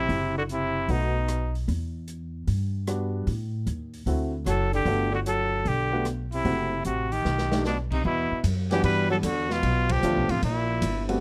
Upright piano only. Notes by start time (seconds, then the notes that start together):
0.89 A3 B3 D#4 F#4
2.87 G3 B3 D4 F#4
4.07 A3 C4 E4 F#4
4.86 A3 B3 D4 F#4
5.92 A3 B3 D4 F#4
6.45 A3 C4 E4 F#4
7.52 A3 D4 D#4 G4
8.72 E3 G3 B3 D4 F#4
10.03 F3 A3 B3 D4 F4
11.09 G3 A3 B3 C4 F#4